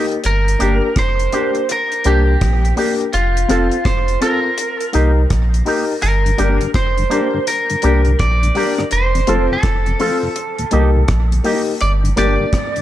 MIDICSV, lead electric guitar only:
0, 0, Header, 1, 2, 480
1, 0, Start_track
1, 0, Key_signature, -2, "minor"
1, 0, Tempo, 723066
1, 159, Time_signature, 4, 2, 24, 8
1, 8509, End_track
2, 0, Start_track
2, 0, Title_t, "Lead electric guitar"
2, 0, Program_c, 0, 29
2, 174, Note_on_c, 0, 70, 100
2, 653, Note_off_c, 0, 70, 0
2, 656, Note_on_c, 0, 72, 100
2, 1140, Note_off_c, 0, 72, 0
2, 1143, Note_on_c, 0, 70, 89
2, 1373, Note_on_c, 0, 67, 75
2, 1377, Note_off_c, 0, 70, 0
2, 1819, Note_off_c, 0, 67, 0
2, 2084, Note_on_c, 0, 65, 85
2, 2557, Note_on_c, 0, 72, 96
2, 2576, Note_off_c, 0, 65, 0
2, 2799, Note_off_c, 0, 72, 0
2, 2802, Note_on_c, 0, 70, 92
2, 3254, Note_off_c, 0, 70, 0
2, 4002, Note_on_c, 0, 70, 86
2, 4453, Note_off_c, 0, 70, 0
2, 4484, Note_on_c, 0, 72, 88
2, 4961, Note_off_c, 0, 72, 0
2, 4964, Note_on_c, 0, 70, 89
2, 5443, Note_on_c, 0, 74, 98
2, 5455, Note_off_c, 0, 70, 0
2, 5893, Note_off_c, 0, 74, 0
2, 5925, Note_on_c, 0, 72, 100
2, 6322, Note_off_c, 0, 72, 0
2, 6325, Note_on_c, 0, 69, 74
2, 7577, Note_off_c, 0, 69, 0
2, 7843, Note_on_c, 0, 74, 107
2, 7907, Note_off_c, 0, 74, 0
2, 8088, Note_on_c, 0, 74, 106
2, 8509, Note_off_c, 0, 74, 0
2, 8509, End_track
0, 0, End_of_file